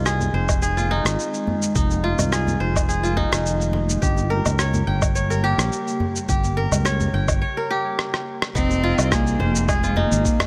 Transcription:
Already playing: fretless electric bass C2, ambient pad D#3 G#3 C4 F4, kora D#4 F4 G4
0.06 kora G#4, cross-stick, shaker
0.21 djembe bass, shaker
0.33 fretless electric bass F1, kora C5, djembe tone
0.49 kick, low woodblock, shaker
0.62 kora G#4, shaker
0.77 kora F4, djembe tone, shaker
0.91 kora D#4, djembe slap
1.05 fretless electric bass G#1, cross-stick, shaker
1.19 shaker
1.34 shaker
1.47 djembe tone, djembe bass
1.62 shaker
1.75 fretless electric bass F1, ambient pad A#3, kora D#4, kick, shaker
1.91 djembe tone, shaker
2.04 kora F4
2.19 fretless electric bass C2, djembe slap, djembe bass, low woodblock, shaker
2.32 kora G#4, cross-stick, shaker
2.47 djembe bass, shaker
2.60 fretless electric bass F1, kora C5
2.76 kick, low woodblock, shaker
2.89 kora G#4, shaker
3.03 kora F4, shaker
3.17 kora D#4, kick, djembe slap, djembe tone
3.32 fretless electric bass F1, cross-stick, djembe slap, shaker
3.46 shaker
3.61 shaker
3.73 djembe slap, djembe tone
3.89 shaker
4.02 fretless electric bass G1, ambient pad C#3 G3 A#3 G4, kora G4, kick, shaker
4.17 djembe tone, shaker
4.30 kora A#4
4.46 fretless electric bass C#2, djembe slap, djembe bass, low woodblock, shaker
4.59 kora C#5, cross-stick, shaker
4.74 djembe bass, shaker
4.87 fretless electric bass G1, kora G5, djembe tone
5.02 kick, low woodblock, shaker
5.15 kora C#5, shaker
5.30 kora A#4, djembe tone, shaker
5.44 kora G4, djembe slap
5.58 fretless electric bass A#1, cross-stick, shaker
5.73 shaker
5.88 shaker
6.00 djembe tone, djembe bass
6.16 shaker
6.29 fretless electric bass G1, kora G4, kick, shaker
6.44 djembe tone, shaker
6.57 kora A#4
6.72 fretless electric bass C#2, djembe slap, djembe bass, low woodblock, shaker
6.85 kora C#5, cross-stick, shaker
7.00 djembe slap, djembe bass, shaker
7.14 fretless electric bass G1, kora G5, djembe tone
7.28 kick, low woodblock, shaker
7.42 kora C#5
7.57 kora A#4
7.71 kora G4
7.99 cross-stick
8.14 cross-stick
8.42 cross-stick
8.55 fretless electric bass F1, ambient pad D#3 G#3 C4 F4, cello C4, kora D#4, kick, shaker
8.70 djembe tone, shaker
8.84 kora F4
8.98 fretless electric bass C2, djembe slap, low woodblock, shaker
9.11 cello A#3, kora G#4, kick, cross-stick, shaker
9.27 shaker
9.39 fretless electric bass F1, kora C5, djembe bass
9.55 shaker
9.67 cello G#3, kora G#4, kick, low woodblock, shaker
9.83 kora F4, djembe tone, shaker
9.96 cello A#3, kora D#4, djembe slap, djembe bass
10.12 fretless electric bass G#1, shaker
10.25 kick, shaker
10.40 cross-stick, djembe tone, djembe bass, low woodblock, shaker

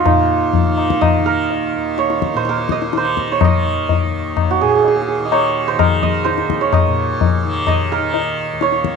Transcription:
Already playing: tanpura D#2 D#3
0.00 santur F4
0.05 tanpura A#2, santur D#4, tabla na, tabla ge
0.53 tabla tin, tabla ge
0.63 tanpura D#3
0.78 tabla na
0.90 tabla ke
1.01 santur D#5, tabla na, tabla ge
1.19 tanpura D#3
1.26 santur A#4
1.51 tabla tin
1.76 tanpura D#2
1.98 santur C#5, tabla te
2.10 tabla te
2.22 tabla ke
2.34 tanpura A#2, santur C5, tabla te
2.45 santur A#4, tabla te
2.58 tabla te
2.69 santur D#5, tabla ke
2.82 tabla te
2.92 tanpura D#3, tabla te
2.97 santur C5
3.05 tabla te
3.17 tabla ke
3.28 santur C#5, tabla te
3.41 santur D#5, tabla na, tabla ge
3.48 tanpura D#3
3.89 tabla tin, tabla ge
4.05 tanpura D#2
4.37 tabla na, tabla ge
4.51 santur F#4
4.61 tanpura A#2, santur G#4
4.69 santur G#4
4.75 santur G#4
4.83 santur G#4, tabla tin
4.88 santur G#4
4.95 santur G#4
5.01 santur G#4
5.08 santur G#4
5.19 tanpura D#3
5.25 santur D#5
5.32 santur C#5, tabla na
5.68 santur C5
5.73 tanpura D#3
5.79 santur A#4, tabla na, tabla ge
6.03 santur D#5, tabla ge
6.25 santur C5, tabla te
6.29 tanpura D#2
6.38 tabla te
6.50 tabla ke
6.61 santur C#5, tabla te
6.73 santur D#5, tabla na, tabla ge
6.87 tanpura A#2
7.21 tabla tin, tabla ge
7.43 tanpura D#3
7.67 santur D#5, tabla na, tabla ge
7.92 santur A#4
7.98 tanpura D#3
8.14 tabla tin
8.53 tanpura D#2
8.61 santur C#5, tabla te
8.72 tabla te
8.84 tabla ke

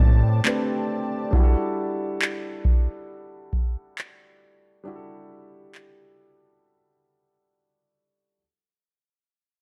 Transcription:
Already playing: analog synth bass A2, grand piano A3 C4 D4 G4 B4, analog synth pad C4 G4 D5 A5
0.00 kick
0.44 grand piano A3 C4 D4 G4 B4, clap
1.31 grand piano G3 D4 E4, kick
1.35 grand piano F#4 G4
1.43 grand piano A4
2.22 clap
2.65 kick
3.53 kick
3.98 clap
4.84 grand piano G3 D4 E4
4.88 grand piano F#4 G4
4.96 grand piano A4
5.75 clap

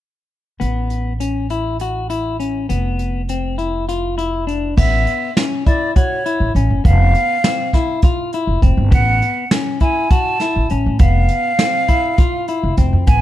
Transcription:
0.60 upright bass A1, clean electric guitar B3, closed hi-hat
0.90 closed hi-hat
1.20 clean electric guitar C#4, closed hi-hat
1.50 clean electric guitar E4, closed hi-hat
1.80 clean electric guitar F#4, closed hi-hat
2.10 clean electric guitar E4, closed hi-hat
2.40 clean electric guitar C#4, closed hi-hat
2.69 upright bass F1, clean electric guitar B3, closed hi-hat
2.99 closed hi-hat
3.29 clean electric guitar C4, closed hi-hat
3.58 clean electric guitar E4, closed hi-hat
3.89 clean electric guitar F4, closed hi-hat
4.18 clean electric guitar E4, closed hi-hat
4.47 clean electric guitar D4, closed hi-hat
4.77 upright bass A1, clean electric guitar B3, flute E5, kick, crash
5.07 closed hi-hat
5.37 clean electric guitar C#4, snare, closed hi-hat
5.66 clean electric guitar E4, flute D5, kick, closed hi-hat
5.95 clean electric guitar F#4, flute C#5, kick, closed hi-hat
6.26 clean electric guitar E4, closed hi-hat
6.40 upright bass A1
6.55 upright bass A1, clean electric guitar C#4, closed hi-hat
6.70 upright bass F#1
6.85 upright bass F1, clean electric guitar B3, flute F5, kick, closed hi-hat
7.15 closed hi-hat
7.44 clean electric guitar C4, snare, closed hi-hat
7.73 clean electric guitar E4, kick, snare, closed hi-hat
8.02 clean electric guitar F4, kick, closed hi-hat
8.33 clean electric guitar E4, closed hi-hat
8.47 upright bass F1
8.62 upright bass F1, clean electric guitar C4, kick, closed hi-hat
8.77 upright bass G1
8.91 upright bass A1, clean electric guitar B3, flute F#5, kick, closed hi-hat
9.22 closed hi-hat
9.51 clean electric guitar C#4, snare, closed hi-hat
9.80 clean electric guitar E4, flute G#5, kick, closed hi-hat
10.10 clean electric guitar F#4, flute A5, kick, closed hi-hat
10.40 clean electric guitar E4, snare, closed hi-hat
10.56 upright bass A1
10.70 upright bass A1, clean electric guitar C#4, closed hi-hat
10.86 upright bass A2
10.99 upright bass F1, clean electric guitar B3, flute F5, kick, closed hi-hat
11.28 closed hi-hat
11.59 clean electric guitar C4, snare, closed hi-hat
11.88 clean electric guitar E4, kick, closed hi-hat
12.18 clean electric guitar F4, kick, closed hi-hat
12.48 clean electric guitar E4, closed hi-hat
12.63 upright bass F1
12.77 upright bass F1, clean electric guitar C4, kick, closed hi-hat
12.93 upright bass F2
13.07 upright bass A1, clean electric guitar B3, flute G#5, kick, closed hi-hat

